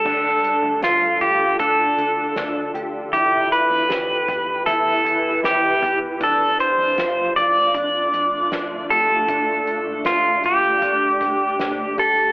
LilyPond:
<<
  \new Staff \with { instrumentName = "Pedal steel guitar" } { \time 4/4 \key d \dorian \tempo 4 = 78 a'4 f'8 g'8 a'4. r8 | g'8 b'4. a'4 g'8. r16 | a'8 c''4 d''2 a'8~ | a'4 f'8 g'2 a'8 | }
  \new Staff \with { instrumentName = "Ambient pad" } { \time 4/4 \key d \dorian << { <d a'>1 | <e b'>1 | f'1 | g'1 | } \\ { <d' f'>1 | <e' g'>1 | <a d'>1~ | <a d'>1 | } >> }
  \new Staff \with { instrumentName = "Clean electric guitar" } { \time 4/4 \key d \dorian d'4 f'8 f'8 d'4 d'8 g'8 | e'4 g'8 g'8 e'4 e'8 g'8 | d'4 f'8 f'8 d'4 d'8 g'8 | d'4 f'8 f'8 d'4 d'8 g'8 | }
  \new Staff \with { instrumentName = "Picked electric bass" } { \clef bass \time 4/4 \key d \dorian d,8 r16 d,16 d,8 d,8 d,8 d,8 d,8 d,8 | e,8 r16 e,16 e,8 e,8 e,8 e,8 e,8 e,8 | f,8 r16 f,16 f,8 f,8 f,8 f,8 f,8 f,8 | g,,8 r16 g,,16 g,,8 g,,8 g,,8 g,,8 g,,8 g,,8 | }
  \new DrumStaff \with { instrumentName = "Drums" } \drummode { \time 4/4 <cymc bd>8 hh8 <hh sn>8 hh8 <hh bd>8 hh8 <hh sn>8 hh8 | <hh bd>8 hh8 <hh sn>8 <hh bd>8 <hh bd>8 hh8 <hh sn>8 <hh bd>8 | <hh bd>8 hh8 <hh sn>8 hh8 <hh bd>8 hh8 <hh sn>8 hh8 | <hh bd>8 hh8 <hh sn>8 hh8 <hh bd>8 <hh bd>8 <hh sn>8 <hh bd>8 | }
>>